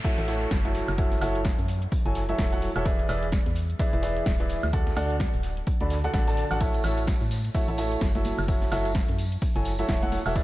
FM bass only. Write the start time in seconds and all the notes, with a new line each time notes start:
0.18 A1
0.51 F#1
0.88 F#1
1.22 F#1
1.59 F#2
2.06 F#1
2.39 E1
2.76 E1
3.09 E1
3.46 E2
3.93 E1
4.26 D1
4.64 D2
4.97 D2
5.34 D1
5.81 D2
6.14 A1
6.51 A1
6.84 A1
7.21 A2
7.68 A1
8.01 F#1
8.39 F#1
8.72 F#1
9.09 F#2
9.56 F#1
9.89 E1
10.26 E1